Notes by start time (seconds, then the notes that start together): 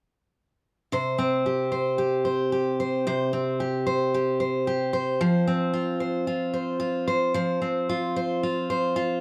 0.92 C3 C5
1.18 C4
1.46 G4
1.72 C5
1.98 G4
2.25 C5
2.52 G4
2.80 C5
3.07 C3 C5
3.33 C4
3.60 G4
3.87 C5
4.14 G4
4.40 C5
4.67 G4
4.93 C5
5.21 F3 C5
5.47 C4
5.73 F4
6.00 C5
6.27 F4
6.54 C5
6.80 F4
7.08 C5
7.34 F3 C5
7.62 C4
7.89 F4
8.16 C5
8.43 F4
8.70 C5
8.96 F4